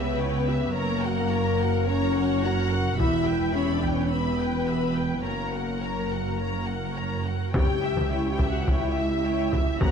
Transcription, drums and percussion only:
0, 0, Header, 1, 2, 480
1, 0, Start_track
1, 0, Tempo, 561798
1, 645, Time_signature, 4, 2, 24, 8
1, 4003, Tempo, 569801
1, 8408, End_track
2, 0, Start_track
2, 0, Title_t, "Taiko and cinematic ensemble drums"
2, 2560, Note_on_c, 9, 41, 61
2, 2646, Note_off_c, 9, 41, 0
2, 3278, Note_on_c, 9, 41, 32
2, 3363, Note_off_c, 9, 41, 0
2, 6409, Note_on_c, 9, 41, 87
2, 6493, Note_off_c, 9, 41, 0
2, 6771, Note_on_c, 9, 41, 62
2, 6855, Note_off_c, 9, 41, 0
2, 7126, Note_on_c, 9, 41, 72
2, 7210, Note_off_c, 9, 41, 0
2, 7366, Note_on_c, 9, 41, 65
2, 7450, Note_off_c, 9, 41, 0
2, 8082, Note_on_c, 9, 41, 69
2, 8166, Note_off_c, 9, 41, 0
2, 8319, Note_on_c, 9, 41, 87
2, 8403, Note_off_c, 9, 41, 0
2, 8408, End_track
0, 0, End_of_file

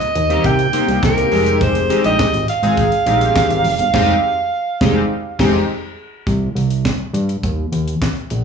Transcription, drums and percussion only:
0, 0, Header, 1, 2, 480
1, 0, Start_track
1, 0, Key_signature, -4, "minor"
1, 0, Tempo, 582524
1, 1327, Time_signature, 4, 2, 24, 8
1, 6957, End_track
2, 0, Start_track
2, 0, Title_t, "Drums"
2, 10, Note_on_c, 9, 42, 54
2, 93, Note_off_c, 9, 42, 0
2, 128, Note_on_c, 9, 42, 85
2, 210, Note_off_c, 9, 42, 0
2, 249, Note_on_c, 9, 42, 56
2, 331, Note_off_c, 9, 42, 0
2, 365, Note_on_c, 9, 42, 89
2, 366, Note_on_c, 9, 36, 104
2, 447, Note_off_c, 9, 42, 0
2, 448, Note_off_c, 9, 36, 0
2, 485, Note_on_c, 9, 42, 53
2, 568, Note_off_c, 9, 42, 0
2, 603, Note_on_c, 9, 42, 81
2, 686, Note_off_c, 9, 42, 0
2, 729, Note_on_c, 9, 42, 54
2, 811, Note_off_c, 9, 42, 0
2, 848, Note_on_c, 9, 36, 127
2, 852, Note_on_c, 9, 38, 113
2, 855, Note_on_c, 9, 39, 95
2, 930, Note_off_c, 9, 36, 0
2, 935, Note_off_c, 9, 38, 0
2, 937, Note_off_c, 9, 39, 0
2, 970, Note_on_c, 9, 42, 58
2, 1052, Note_off_c, 9, 42, 0
2, 1085, Note_on_c, 9, 46, 74
2, 1167, Note_off_c, 9, 46, 0
2, 1206, Note_on_c, 9, 42, 50
2, 1288, Note_off_c, 9, 42, 0
2, 1327, Note_on_c, 9, 36, 127
2, 1327, Note_on_c, 9, 42, 79
2, 1409, Note_off_c, 9, 36, 0
2, 1409, Note_off_c, 9, 42, 0
2, 1443, Note_on_c, 9, 42, 58
2, 1525, Note_off_c, 9, 42, 0
2, 1567, Note_on_c, 9, 42, 81
2, 1650, Note_off_c, 9, 42, 0
2, 1684, Note_on_c, 9, 42, 58
2, 1766, Note_off_c, 9, 42, 0
2, 1808, Note_on_c, 9, 36, 122
2, 1810, Note_on_c, 9, 38, 122
2, 1812, Note_on_c, 9, 39, 95
2, 1891, Note_off_c, 9, 36, 0
2, 1892, Note_off_c, 9, 38, 0
2, 1894, Note_off_c, 9, 39, 0
2, 1928, Note_on_c, 9, 42, 57
2, 2010, Note_off_c, 9, 42, 0
2, 2046, Note_on_c, 9, 42, 77
2, 2128, Note_off_c, 9, 42, 0
2, 2167, Note_on_c, 9, 42, 55
2, 2250, Note_off_c, 9, 42, 0
2, 2286, Note_on_c, 9, 36, 113
2, 2286, Note_on_c, 9, 42, 91
2, 2368, Note_off_c, 9, 42, 0
2, 2369, Note_off_c, 9, 36, 0
2, 2405, Note_on_c, 9, 42, 54
2, 2488, Note_off_c, 9, 42, 0
2, 2525, Note_on_c, 9, 42, 83
2, 2608, Note_off_c, 9, 42, 0
2, 2647, Note_on_c, 9, 42, 57
2, 2729, Note_off_c, 9, 42, 0
2, 2766, Note_on_c, 9, 36, 118
2, 2771, Note_on_c, 9, 38, 126
2, 2773, Note_on_c, 9, 39, 99
2, 2849, Note_off_c, 9, 36, 0
2, 2853, Note_off_c, 9, 38, 0
2, 2855, Note_off_c, 9, 39, 0
2, 2887, Note_on_c, 9, 42, 59
2, 2969, Note_off_c, 9, 42, 0
2, 3003, Note_on_c, 9, 46, 81
2, 3085, Note_off_c, 9, 46, 0
2, 3123, Note_on_c, 9, 42, 52
2, 3206, Note_off_c, 9, 42, 0
2, 3243, Note_on_c, 9, 49, 86
2, 3245, Note_on_c, 9, 36, 118
2, 3247, Note_on_c, 9, 38, 109
2, 3325, Note_off_c, 9, 49, 0
2, 3327, Note_off_c, 9, 36, 0
2, 3330, Note_off_c, 9, 38, 0
2, 3964, Note_on_c, 9, 36, 118
2, 3966, Note_on_c, 9, 38, 109
2, 4046, Note_off_c, 9, 36, 0
2, 4048, Note_off_c, 9, 38, 0
2, 4442, Note_on_c, 9, 49, 81
2, 4444, Note_on_c, 9, 36, 108
2, 4447, Note_on_c, 9, 38, 106
2, 4525, Note_off_c, 9, 49, 0
2, 4526, Note_off_c, 9, 36, 0
2, 4530, Note_off_c, 9, 38, 0
2, 5165, Note_on_c, 9, 36, 112
2, 5165, Note_on_c, 9, 42, 74
2, 5247, Note_off_c, 9, 36, 0
2, 5248, Note_off_c, 9, 42, 0
2, 5410, Note_on_c, 9, 42, 72
2, 5492, Note_off_c, 9, 42, 0
2, 5525, Note_on_c, 9, 42, 51
2, 5607, Note_off_c, 9, 42, 0
2, 5647, Note_on_c, 9, 36, 100
2, 5648, Note_on_c, 9, 38, 103
2, 5651, Note_on_c, 9, 39, 87
2, 5729, Note_off_c, 9, 36, 0
2, 5731, Note_off_c, 9, 38, 0
2, 5733, Note_off_c, 9, 39, 0
2, 5887, Note_on_c, 9, 42, 72
2, 5969, Note_off_c, 9, 42, 0
2, 6008, Note_on_c, 9, 42, 53
2, 6090, Note_off_c, 9, 42, 0
2, 6126, Note_on_c, 9, 36, 95
2, 6126, Note_on_c, 9, 42, 81
2, 6208, Note_off_c, 9, 36, 0
2, 6209, Note_off_c, 9, 42, 0
2, 6366, Note_on_c, 9, 42, 74
2, 6449, Note_off_c, 9, 42, 0
2, 6490, Note_on_c, 9, 42, 53
2, 6572, Note_off_c, 9, 42, 0
2, 6606, Note_on_c, 9, 36, 103
2, 6611, Note_on_c, 9, 38, 107
2, 6614, Note_on_c, 9, 39, 87
2, 6689, Note_off_c, 9, 36, 0
2, 6693, Note_off_c, 9, 38, 0
2, 6696, Note_off_c, 9, 39, 0
2, 6730, Note_on_c, 9, 42, 33
2, 6813, Note_off_c, 9, 42, 0
2, 6842, Note_on_c, 9, 42, 70
2, 6925, Note_off_c, 9, 42, 0
2, 6957, End_track
0, 0, End_of_file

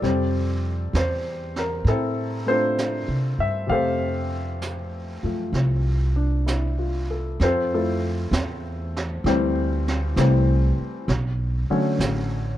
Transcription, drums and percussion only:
0, 0, Header, 1, 2, 480
1, 0, Start_track
1, 0, Key_signature, -1, "major"
1, 0, Tempo, 923077
1, 12, Time_signature, 4, 2, 24, 8
1, 4812, Tempo, 911854
1, 6560, End_track
2, 0, Start_track
2, 0, Title_t, "Drums"
2, 18, Note_on_c, 9, 25, 33
2, 18, Note_on_c, 9, 38, 21
2, 70, Note_off_c, 9, 38, 0
2, 493, Note_off_c, 9, 25, 0
2, 493, Note_on_c, 9, 25, 28
2, 493, Note_on_c, 9, 38, 37
2, 493, Note_on_c, 9, 44, 36
2, 545, Note_off_c, 9, 38, 0
2, 545, Note_off_c, 9, 44, 0
2, 811, Note_on_c, 9, 38, 25
2, 863, Note_off_c, 9, 38, 0
2, 970, Note_off_c, 9, 25, 0
2, 970, Note_on_c, 9, 25, 33
2, 970, Note_on_c, 9, 38, 20
2, 1022, Note_off_c, 9, 38, 0
2, 1447, Note_off_c, 9, 25, 0
2, 1447, Note_on_c, 9, 25, 25
2, 1447, Note_on_c, 9, 38, 32
2, 1447, Note_on_c, 9, 44, 38
2, 1499, Note_off_c, 9, 38, 0
2, 1499, Note_off_c, 9, 44, 0
2, 1920, Note_off_c, 9, 25, 0
2, 1920, Note_on_c, 9, 25, 30
2, 2401, Note_off_c, 9, 25, 0
2, 2401, Note_on_c, 9, 25, 31
2, 2401, Note_on_c, 9, 38, 31
2, 2401, Note_on_c, 9, 44, 36
2, 2453, Note_off_c, 9, 38, 0
2, 2453, Note_off_c, 9, 44, 0
2, 2879, Note_off_c, 9, 25, 0
2, 2879, Note_on_c, 9, 25, 29
2, 2879, Note_on_c, 9, 38, 22
2, 2931, Note_off_c, 9, 38, 0
2, 3367, Note_off_c, 9, 25, 0
2, 3367, Note_on_c, 9, 25, 28
2, 3367, Note_on_c, 9, 38, 32
2, 3367, Note_on_c, 9, 44, 44
2, 3419, Note_off_c, 9, 38, 0
2, 3419, Note_off_c, 9, 44, 0
2, 3851, Note_off_c, 9, 25, 0
2, 3851, Note_on_c, 9, 25, 39
2, 3851, Note_on_c, 9, 38, 37
2, 3903, Note_off_c, 9, 38, 0
2, 4331, Note_on_c, 9, 38, 53
2, 4331, Note_on_c, 9, 44, 44
2, 4383, Note_off_c, 9, 38, 0
2, 4383, Note_off_c, 9, 44, 0
2, 4662, Note_on_c, 9, 38, 36
2, 4714, Note_off_c, 9, 38, 0
2, 4816, Note_off_c, 9, 25, 0
2, 4816, Note_on_c, 9, 25, 38
2, 4816, Note_on_c, 9, 38, 34
2, 4868, Note_off_c, 9, 38, 0
2, 5141, Note_on_c, 9, 38, 43
2, 5194, Note_off_c, 9, 38, 0
2, 5295, Note_on_c, 9, 38, 53
2, 5295, Note_on_c, 9, 44, 49
2, 5347, Note_off_c, 9, 38, 0
2, 5347, Note_off_c, 9, 44, 0
2, 5776, Note_off_c, 9, 25, 0
2, 5776, Note_on_c, 9, 25, 39
2, 5776, Note_on_c, 9, 38, 34
2, 5829, Note_off_c, 9, 38, 0
2, 6259, Note_on_c, 9, 38, 48
2, 6259, Note_on_c, 9, 44, 53
2, 6312, Note_off_c, 9, 38, 0
2, 6312, Note_off_c, 9, 44, 0
2, 6560, Note_off_c, 9, 25, 0
2, 6560, End_track
0, 0, End_of_file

